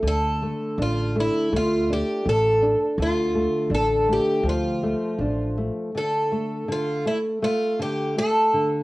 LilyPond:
<<
  \new Staff \with { instrumentName = "Twelve-string acoustic guitar" } { \time 2/4 \key d \minor \tempo 4 = 81 a'4 f'8 e'8 | f'8 g'8 a'8. r16 | f'4 a'8 g'8 | f'4. r8 |
a'4 f'8 e'8 | f'8 g'8 a'8. r16 | }
  \new Staff \with { instrumentName = "Nylon-string guitar" } { \time 2/4 \key d \minor d8 a8 d'8 a8 | a8 d'8 a8 d'8 | d8 a8 d'8 a8 | f8 a8 d'8 a8 |
d8 a8 d8 a8 | a8 d8 a8 d8 | }
  \new Staff \with { instrumentName = "Upright bass" } { \clef bass \time 2/4 \key d \minor d,4 a,,4 | d,4 a,,4 | d,4 a,,4 | d,4 a,,4 |
r2 | r2 | }
>>